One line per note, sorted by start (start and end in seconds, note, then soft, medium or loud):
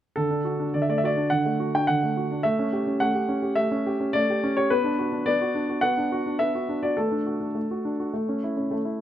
0.16 0.73 D3 soft
0.16 0.74 A4 medium
0.31 0.54 D4 soft
0.45 0.68 F#4 soft
0.60 0.83 D4 soft
0.74 1.30 D3 soft
0.74 0.82 D5 medium
0.82 0.90 E5 medium
0.89 1.12 A3 soft
0.89 0.98 D5 medium
0.98 1.06 E5 medium
1.04 1.26 F#4 soft
1.04 1.31 D5 medium
1.17 1.40 D4 soft
1.30 1.87 D3 soft
1.30 1.74 F#5 medium
1.46 1.69 A3 soft
1.60 1.83 F#4 soft
1.75 1.98 D4 soft
1.75 1.89 G5 medium
1.87 2.44 D3 soft
1.87 2.45 F#5 medium
2.03 2.26 A3 soft
2.17 2.40 F#4 soft
2.31 2.46 D4 soft
2.43 3.00 A3 medium
2.43 3.01 E5 medium
2.59 2.82 C#4 soft
2.73 2.96 G4 soft
2.87 3.10 C#4 soft
3.00 3.55 A3 soft
3.00 3.57 F#5 medium
3.15 3.38 G4 soft
3.29 3.52 C#4 soft
3.42 3.66 G4 soft
3.56 4.13 A3 soft
3.56 4.13 E5 medium
3.71 3.94 C#4 soft
3.86 4.09 G4 soft
4.00 4.23 C#4 soft
4.13 4.69 A3 soft
4.13 4.56 D5 medium
4.30 4.52 G4 soft
4.43 4.66 C#4 soft
4.57 4.71 G4 soft
4.57 4.71 C#5 medium
4.70 5.25 B3 medium
4.70 5.26 B4 medium
4.84 5.07 D4 soft
4.99 5.21 F#4 soft
5.12 5.35 D4 soft
5.26 5.81 B3 soft
5.26 5.83 D5 medium
5.41 5.64 F#4 soft
5.55 5.77 D4 soft
5.69 5.92 F#4 soft
5.81 6.39 B3 soft
5.81 6.39 F#5 medium
5.97 6.20 D4 soft
6.12 6.35 F#4 soft
6.26 6.49 D4 soft
6.39 6.96 B3 soft
6.39 6.83 E5 medium
6.55 6.78 F#4 soft
6.69 6.92 D4 soft
6.83 6.98 F#4 soft
6.83 6.98 D5 medium
6.97 7.53 A3 soft
6.97 9.01 A4 medium
7.12 7.35 D4 soft
7.26 7.50 F#4 soft
7.40 7.64 D4 soft
7.55 8.12 A3 soft
7.71 7.94 F#4 soft
7.85 8.08 D4 soft
8.00 8.14 F#4 soft
8.13 8.69 A3 soft
8.29 8.52 C#4 soft
8.44 8.67 E4 soft
8.57 8.80 C#4 soft
8.71 9.01 A3 soft
8.85 9.01 E4 soft